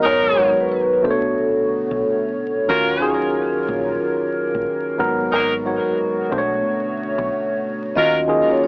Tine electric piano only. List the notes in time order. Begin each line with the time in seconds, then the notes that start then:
Already playing: G#2 F#3 B3 A#4
0.37 G#2 F#3 B3 C#5
1.02 B2 A3 D4 C5
1.10 C#5
2.68 D#3 C#4 F4 F#4
3.00 D#3 C#4 F4 G#4
4.98 G#2 F#3 B3 A#4
5.65 G#2 F#3 B3 C#5
6.29 B2 A3 D4 C5
6.38 C#5
7.95 D#3 C#4 F4 F#4
8.27 D#3 C#4 F4 G#4